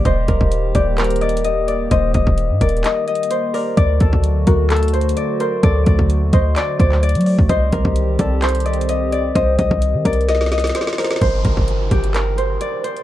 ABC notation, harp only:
X:1
M:4/4
L:1/8
Q:1/4=129
K:Gm
V:1 name="Harp"
c B2 G B d e d | e e2 d e e c B | d A2 ^F A c d c | d d2 c d d d2 |
c B2 A c d e d | e e2 d e e c B | c B2 G B c d c |]